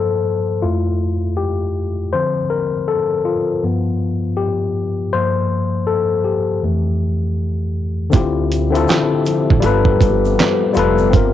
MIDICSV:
0, 0, Header, 1, 5, 480
1, 0, Start_track
1, 0, Key_signature, -1, "minor"
1, 0, Tempo, 750000
1, 1363, Time_signature, 4, 2, 24, 8
1, 7254, End_track
2, 0, Start_track
2, 0, Title_t, "Tine electric piano"
2, 0, Program_c, 0, 4
2, 0, Control_c, 0, 64, 127
2, 0, Note_on_c, 0, 43, 50
2, 0, Note_on_c, 0, 53, 39
2, 0, Note_on_c, 0, 58, 50
2, 0, Note_on_c, 0, 69, 79
2, 0, Note_on_c, 0, 72, 83
2, 376, Note_off_c, 0, 43, 0
2, 377, Note_off_c, 0, 53, 0
2, 379, Note_off_c, 0, 58, 0
2, 399, Note_on_c, 0, 65, 81
2, 401, Note_on_c, 0, 41, 53
2, 404, Note_on_c, 0, 64, 48
2, 409, Note_on_c, 0, 57, 58
2, 412, Note_off_c, 0, 72, 0
2, 412, Control_c, 0, 64, 0
2, 415, Note_off_c, 0, 69, 0
2, 510, Control_c, 0, 64, 127
2, 743, Note_off_c, 0, 41, 0
2, 744, Note_off_c, 0, 64, 0
2, 747, Note_off_c, 0, 57, 0
2, 876, Note_on_c, 0, 67, 78
2, 895, Note_off_c, 0, 65, 0
2, 1242, Note_off_c, 0, 67, 0
2, 1361, Note_on_c, 0, 72, 81
2, 1362, Note_on_c, 0, 50, 52
2, 1365, Note_on_c, 0, 53, 40
2, 1369, Note_on_c, 0, 60, 53
2, 1370, Control_c, 0, 64, 0
2, 1490, Control_c, 0, 64, 127
2, 1599, Note_on_c, 0, 70, 83
2, 1609, Note_off_c, 0, 72, 0
2, 1703, Note_off_c, 0, 50, 0
2, 1705, Note_off_c, 0, 53, 0
2, 1707, Note_off_c, 0, 60, 0
2, 1708, Note_off_c, 0, 70, 0
2, 1841, Note_on_c, 0, 69, 82
2, 2065, Note_off_c, 0, 69, 0
2, 2079, Note_on_c, 0, 65, 75
2, 2322, Note_on_c, 0, 43, 50
2, 2326, Note_on_c, 0, 53, 45
2, 2331, Control_c, 0, 64, 0
2, 2331, Note_on_c, 0, 59, 58
2, 2438, Control_c, 0, 64, 127
2, 2795, Note_on_c, 0, 67, 81
2, 2822, Note_off_c, 0, 65, 0
2, 3017, Note_off_c, 0, 43, 0
2, 3019, Note_off_c, 0, 53, 0
2, 3021, Note_off_c, 0, 59, 0
2, 3162, Note_off_c, 0, 67, 0
2, 3283, Note_on_c, 0, 72, 91
2, 3287, Note_on_c, 0, 43, 46
2, 3290, Note_on_c, 0, 53, 46
2, 3291, Control_c, 0, 64, 0
2, 3294, Note_on_c, 0, 58, 56
2, 3393, Control_c, 0, 64, 127
2, 3626, Note_off_c, 0, 43, 0
2, 3627, Note_off_c, 0, 53, 0
2, 3629, Note_off_c, 0, 58, 0
2, 3756, Note_on_c, 0, 69, 82
2, 3777, Note_off_c, 0, 72, 0
2, 3866, Note_off_c, 0, 69, 0
2, 3997, Note_on_c, 0, 67, 65
2, 4243, Note_on_c, 0, 41, 55
2, 4244, Note_on_c, 0, 52, 52
2, 4251, Control_c, 0, 64, 0
2, 4251, Note_on_c, 0, 57, 54
2, 4354, Control_c, 0, 64, 127
2, 4934, Note_off_c, 0, 67, 0
2, 5177, Note_off_c, 0, 41, 0
2, 5178, Note_off_c, 0, 52, 0
2, 5181, Note_off_c, 0, 57, 0
2, 5183, Note_on_c, 0, 50, 84
2, 5192, Note_on_c, 0, 60, 72
2, 5201, Note_on_c, 0, 64, 72
2, 5211, Control_c, 0, 64, 0
2, 5213, Note_on_c, 0, 65, 77
2, 5220, Note_on_c, 0, 67, 86
2, 5312, Control_c, 0, 64, 127
2, 5466, Note_off_c, 0, 50, 0
2, 5471, Note_off_c, 0, 60, 0
2, 5475, Note_off_c, 0, 64, 0
2, 5481, Note_off_c, 0, 65, 0
2, 5484, Note_off_c, 0, 67, 0
2, 5572, Note_on_c, 0, 50, 91
2, 5582, Note_on_c, 0, 60, 86
2, 5591, Note_on_c, 0, 64, 80
2, 5600, Note_on_c, 0, 65, 82
2, 5610, Note_on_c, 0, 69, 96
2, 6144, Note_on_c, 0, 55, 101
2, 6149, Note_off_c, 0, 65, 0
2, 6153, Note_off_c, 0, 50, 0
2, 6156, Note_on_c, 0, 65, 82
2, 6158, Note_off_c, 0, 60, 0
2, 6162, Note_off_c, 0, 69, 0
2, 6163, Note_off_c, 0, 64, 0
2, 6170, Note_on_c, 0, 69, 80
2, 6172, Control_c, 0, 64, 0
2, 6181, Note_on_c, 0, 71, 110
2, 6298, Control_c, 0, 64, 127
2, 6752, Note_off_c, 0, 55, 0
2, 6758, Note_off_c, 0, 65, 0
2, 6765, Note_off_c, 0, 69, 0
2, 6771, Note_off_c, 0, 71, 0
2, 6867, Note_on_c, 0, 55, 86
2, 6879, Note_on_c, 0, 65, 88
2, 6892, Note_on_c, 0, 69, 89
2, 6905, Note_on_c, 0, 71, 103
2, 7067, Note_off_c, 0, 55, 0
2, 7074, Note_off_c, 0, 65, 0
2, 7080, Note_off_c, 0, 69, 0
2, 7087, Note_off_c, 0, 71, 0
2, 7105, Note_on_c, 0, 60, 84
2, 7126, Note_on_c, 0, 65, 69
2, 7131, Control_c, 0, 64, 0
2, 7143, Note_on_c, 0, 70, 94
2, 7225, Control_c, 0, 64, 127
2, 7254, Note_off_c, 0, 60, 0
2, 7254, Note_off_c, 0, 65, 0
2, 7254, Note_off_c, 0, 70, 0
2, 7254, End_track
3, 0, Start_track
3, 0, Title_t, "Ambient pad"
3, 0, Program_c, 1, 92
3, 5193, Note_on_c, 1, 67, 85
3, 5194, Note_on_c, 1, 53, 79
3, 5194, Note_on_c, 1, 76, 69
3, 5198, Note_on_c, 1, 60, 72
3, 6149, Note_off_c, 1, 76, 0
3, 6151, Note_off_c, 1, 60, 0
3, 6154, Note_on_c, 1, 59, 70
3, 6155, Note_on_c, 1, 57, 66
3, 7099, Note_off_c, 1, 53, 0
3, 7099, Note_off_c, 1, 67, 0
3, 7109, Note_off_c, 1, 57, 0
3, 7109, Note_off_c, 1, 59, 0
3, 7254, End_track
4, 0, Start_track
4, 0, Title_t, "Upright bass"
4, 0, Program_c, 2, 32
4, 5207, Note_on_c, 2, 38, 111
4, 5659, Note_off_c, 2, 38, 0
4, 6084, Note_on_c, 2, 33, 89
4, 6162, Note_off_c, 2, 33, 0
4, 6164, Note_on_c, 2, 31, 104
4, 6383, Note_off_c, 2, 31, 0
4, 6405, Note_on_c, 2, 31, 79
4, 6623, Note_off_c, 2, 31, 0
4, 6890, Note_on_c, 2, 29, 85
4, 7127, Note_off_c, 2, 29, 0
4, 7127, Note_on_c, 2, 31, 100
4, 7254, Note_off_c, 2, 31, 0
4, 7254, End_track
5, 0, Start_track
5, 0, Title_t, "Drums"
5, 5199, Note_on_c, 9, 82, 55
5, 5205, Note_on_c, 9, 36, 108
5, 5209, Note_on_c, 9, 42, 83
5, 5263, Note_off_c, 9, 82, 0
5, 5269, Note_off_c, 9, 36, 0
5, 5273, Note_off_c, 9, 42, 0
5, 5450, Note_on_c, 9, 42, 73
5, 5456, Note_on_c, 9, 82, 46
5, 5514, Note_off_c, 9, 42, 0
5, 5520, Note_off_c, 9, 82, 0
5, 5600, Note_on_c, 9, 82, 49
5, 5602, Note_on_c, 9, 42, 36
5, 5664, Note_off_c, 9, 82, 0
5, 5666, Note_off_c, 9, 42, 0
5, 5684, Note_on_c, 9, 82, 69
5, 5698, Note_on_c, 9, 38, 105
5, 5698, Note_on_c, 9, 39, 81
5, 5706, Note_on_c, 9, 42, 83
5, 5748, Note_off_c, 9, 82, 0
5, 5762, Note_off_c, 9, 38, 0
5, 5762, Note_off_c, 9, 39, 0
5, 5770, Note_off_c, 9, 42, 0
5, 5925, Note_on_c, 9, 82, 60
5, 5930, Note_on_c, 9, 42, 69
5, 5989, Note_off_c, 9, 82, 0
5, 5994, Note_off_c, 9, 42, 0
5, 6082, Note_on_c, 9, 36, 102
5, 6146, Note_off_c, 9, 36, 0
5, 6158, Note_on_c, 9, 42, 78
5, 6166, Note_on_c, 9, 82, 69
5, 6222, Note_off_c, 9, 42, 0
5, 6230, Note_off_c, 9, 82, 0
5, 6305, Note_on_c, 9, 36, 104
5, 6369, Note_off_c, 9, 36, 0
5, 6404, Note_on_c, 9, 36, 96
5, 6405, Note_on_c, 9, 82, 58
5, 6411, Note_on_c, 9, 42, 62
5, 6468, Note_off_c, 9, 36, 0
5, 6469, Note_off_c, 9, 82, 0
5, 6475, Note_off_c, 9, 42, 0
5, 6560, Note_on_c, 9, 82, 52
5, 6624, Note_off_c, 9, 82, 0
5, 6652, Note_on_c, 9, 42, 91
5, 6653, Note_on_c, 9, 82, 60
5, 6657, Note_on_c, 9, 38, 115
5, 6657, Note_on_c, 9, 39, 92
5, 6716, Note_off_c, 9, 42, 0
5, 6717, Note_off_c, 9, 82, 0
5, 6721, Note_off_c, 9, 38, 0
5, 6721, Note_off_c, 9, 39, 0
5, 6874, Note_on_c, 9, 82, 46
5, 6891, Note_on_c, 9, 42, 70
5, 6938, Note_off_c, 9, 82, 0
5, 6955, Note_off_c, 9, 42, 0
5, 7027, Note_on_c, 9, 82, 50
5, 7091, Note_off_c, 9, 82, 0
5, 7120, Note_on_c, 9, 82, 53
5, 7125, Note_on_c, 9, 36, 119
5, 7129, Note_on_c, 9, 42, 89
5, 7184, Note_off_c, 9, 82, 0
5, 7189, Note_off_c, 9, 36, 0
5, 7193, Note_off_c, 9, 42, 0
5, 7254, End_track
0, 0, End_of_file